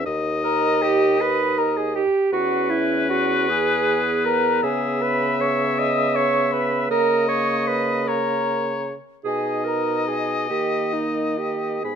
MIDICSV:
0, 0, Header, 1, 6, 480
1, 0, Start_track
1, 0, Tempo, 762389
1, 32, Time_signature, 6, 3, 24, 8
1, 4832, Tempo, 800000
1, 6272, Tempo, 882353
1, 7294, End_track
2, 0, Start_track
2, 0, Title_t, "Flute"
2, 0, Program_c, 0, 73
2, 273, Note_on_c, 0, 82, 84
2, 511, Note_on_c, 0, 79, 81
2, 521, Note_off_c, 0, 82, 0
2, 756, Note_on_c, 0, 83, 96
2, 766, Note_off_c, 0, 79, 0
2, 992, Note_on_c, 0, 82, 76
2, 1001, Note_off_c, 0, 83, 0
2, 1113, Note_on_c, 0, 80, 68
2, 1123, Note_off_c, 0, 82, 0
2, 1225, Note_on_c, 0, 79, 73
2, 1235, Note_off_c, 0, 80, 0
2, 1453, Note_off_c, 0, 79, 0
2, 1456, Note_on_c, 0, 78, 81
2, 1697, Note_on_c, 0, 76, 85
2, 1707, Note_off_c, 0, 78, 0
2, 1944, Note_on_c, 0, 78, 73
2, 1953, Note_off_c, 0, 76, 0
2, 2191, Note_off_c, 0, 78, 0
2, 2201, Note_on_c, 0, 80, 86
2, 2518, Note_off_c, 0, 80, 0
2, 2675, Note_on_c, 0, 82, 90
2, 2920, Note_on_c, 0, 80, 73
2, 2930, Note_off_c, 0, 82, 0
2, 3153, Note_on_c, 0, 83, 89
2, 3162, Note_off_c, 0, 80, 0
2, 3402, Note_on_c, 0, 85, 71
2, 3411, Note_off_c, 0, 83, 0
2, 3636, Note_on_c, 0, 87, 81
2, 3646, Note_off_c, 0, 85, 0
2, 3867, Note_on_c, 0, 85, 83
2, 3877, Note_off_c, 0, 87, 0
2, 4103, Note_on_c, 0, 83, 81
2, 4112, Note_off_c, 0, 85, 0
2, 4343, Note_off_c, 0, 83, 0
2, 4348, Note_on_c, 0, 82, 84
2, 4581, Note_on_c, 0, 85, 80
2, 4590, Note_off_c, 0, 82, 0
2, 4830, Note_on_c, 0, 83, 79
2, 4839, Note_off_c, 0, 85, 0
2, 5076, Note_on_c, 0, 82, 79
2, 5085, Note_off_c, 0, 83, 0
2, 5544, Note_off_c, 0, 82, 0
2, 5781, Note_on_c, 0, 80, 68
2, 6004, Note_off_c, 0, 80, 0
2, 6026, Note_on_c, 0, 82, 64
2, 6272, Note_on_c, 0, 80, 59
2, 6280, Note_off_c, 0, 82, 0
2, 6503, Note_on_c, 0, 79, 51
2, 6511, Note_off_c, 0, 80, 0
2, 6736, Note_on_c, 0, 75, 44
2, 6744, Note_off_c, 0, 79, 0
2, 6982, Note_on_c, 0, 79, 51
2, 6991, Note_off_c, 0, 75, 0
2, 7224, Note_off_c, 0, 79, 0
2, 7228, Note_on_c, 0, 80, 53
2, 7294, Note_off_c, 0, 80, 0
2, 7294, End_track
3, 0, Start_track
3, 0, Title_t, "Oboe"
3, 0, Program_c, 1, 68
3, 34, Note_on_c, 1, 75, 91
3, 1268, Note_off_c, 1, 75, 0
3, 1464, Note_on_c, 1, 71, 95
3, 2890, Note_off_c, 1, 71, 0
3, 2913, Note_on_c, 1, 76, 86
3, 4320, Note_off_c, 1, 76, 0
3, 4348, Note_on_c, 1, 75, 79
3, 5075, Note_on_c, 1, 73, 70
3, 5084, Note_off_c, 1, 75, 0
3, 5613, Note_off_c, 1, 73, 0
3, 5783, Note_on_c, 1, 75, 73
3, 7208, Note_off_c, 1, 75, 0
3, 7235, Note_on_c, 1, 83, 43
3, 7294, Note_off_c, 1, 83, 0
3, 7294, End_track
4, 0, Start_track
4, 0, Title_t, "Clarinet"
4, 0, Program_c, 2, 71
4, 276, Note_on_c, 2, 70, 89
4, 520, Note_on_c, 2, 67, 95
4, 529, Note_off_c, 2, 70, 0
4, 763, Note_on_c, 2, 71, 107
4, 773, Note_off_c, 2, 67, 0
4, 996, Note_on_c, 2, 70, 91
4, 1006, Note_off_c, 2, 71, 0
4, 1116, Note_on_c, 2, 68, 87
4, 1126, Note_off_c, 2, 70, 0
4, 1227, Note_off_c, 2, 68, 0
4, 1231, Note_on_c, 2, 67, 91
4, 1456, Note_off_c, 2, 67, 0
4, 1467, Note_on_c, 2, 66, 97
4, 1700, Note_on_c, 2, 64, 91
4, 1709, Note_off_c, 2, 66, 0
4, 1946, Note_off_c, 2, 64, 0
4, 1951, Note_on_c, 2, 66, 86
4, 2198, Note_on_c, 2, 68, 100
4, 2207, Note_off_c, 2, 66, 0
4, 2678, Note_on_c, 2, 70, 94
4, 2688, Note_off_c, 2, 68, 0
4, 2919, Note_on_c, 2, 68, 94
4, 2928, Note_off_c, 2, 70, 0
4, 3161, Note_on_c, 2, 71, 93
4, 3171, Note_off_c, 2, 68, 0
4, 3406, Note_on_c, 2, 73, 84
4, 3415, Note_off_c, 2, 71, 0
4, 3648, Note_on_c, 2, 75, 98
4, 3658, Note_off_c, 2, 73, 0
4, 3879, Note_on_c, 2, 73, 96
4, 3889, Note_off_c, 2, 75, 0
4, 4108, Note_off_c, 2, 73, 0
4, 4112, Note_on_c, 2, 71, 76
4, 4343, Note_off_c, 2, 71, 0
4, 4351, Note_on_c, 2, 70, 105
4, 4583, Note_off_c, 2, 70, 0
4, 4588, Note_on_c, 2, 73, 93
4, 4831, Note_on_c, 2, 71, 84
4, 4840, Note_off_c, 2, 73, 0
4, 5067, Note_on_c, 2, 70, 71
4, 5076, Note_off_c, 2, 71, 0
4, 5539, Note_off_c, 2, 70, 0
4, 5775, Note_on_c, 2, 68, 85
4, 6017, Note_on_c, 2, 70, 81
4, 6026, Note_off_c, 2, 68, 0
4, 6265, Note_off_c, 2, 70, 0
4, 6268, Note_on_c, 2, 68, 66
4, 6496, Note_off_c, 2, 68, 0
4, 6501, Note_on_c, 2, 67, 69
4, 6738, Note_on_c, 2, 63, 59
4, 6746, Note_off_c, 2, 67, 0
4, 6982, Note_on_c, 2, 67, 52
4, 6990, Note_off_c, 2, 63, 0
4, 7230, Note_on_c, 2, 68, 62
4, 7238, Note_off_c, 2, 67, 0
4, 7294, Note_off_c, 2, 68, 0
4, 7294, End_track
5, 0, Start_track
5, 0, Title_t, "French horn"
5, 0, Program_c, 3, 60
5, 36, Note_on_c, 3, 63, 76
5, 754, Note_off_c, 3, 63, 0
5, 758, Note_on_c, 3, 63, 71
5, 1282, Note_off_c, 3, 63, 0
5, 1458, Note_on_c, 3, 61, 70
5, 2195, Note_on_c, 3, 59, 71
5, 2204, Note_off_c, 3, 61, 0
5, 4339, Note_on_c, 3, 58, 76
5, 4348, Note_off_c, 3, 59, 0
5, 5607, Note_off_c, 3, 58, 0
5, 5776, Note_on_c, 3, 63, 61
5, 6479, Note_off_c, 3, 63, 0
5, 6503, Note_on_c, 3, 58, 46
5, 7213, Note_off_c, 3, 58, 0
5, 7227, Note_on_c, 3, 59, 39
5, 7294, Note_off_c, 3, 59, 0
5, 7294, End_track
6, 0, Start_track
6, 0, Title_t, "Bassoon"
6, 0, Program_c, 4, 70
6, 37, Note_on_c, 4, 39, 74
6, 1270, Note_off_c, 4, 39, 0
6, 1463, Note_on_c, 4, 40, 72
6, 2890, Note_off_c, 4, 40, 0
6, 2915, Note_on_c, 4, 49, 75
6, 4321, Note_off_c, 4, 49, 0
6, 4345, Note_on_c, 4, 49, 65
6, 5586, Note_off_c, 4, 49, 0
6, 5776, Note_on_c, 4, 47, 53
6, 6479, Note_off_c, 4, 47, 0
6, 6505, Note_on_c, 4, 51, 45
6, 7214, Note_off_c, 4, 51, 0
6, 7231, Note_on_c, 4, 44, 41
6, 7294, Note_off_c, 4, 44, 0
6, 7294, End_track
0, 0, End_of_file